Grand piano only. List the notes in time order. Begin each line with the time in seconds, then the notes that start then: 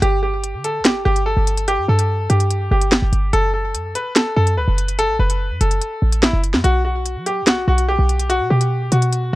0.02 G4
0.23 G4
0.64 A4
0.85 G4
1.05 G4
1.26 A4
1.68 G4
1.89 A4
2.30 G4
2.71 G4
3.33 A4
3.54 A4
3.95 B4
4.16 A4
4.36 A4
4.57 B4
4.99 A4
5.20 B4
5.61 A4
6.23 E4
6.64 F#4
6.85 F#4
7.26 G4
7.47 F#4
7.68 F#4
7.89 G4
8.30 F#4
8.50 G4
8.92 F#4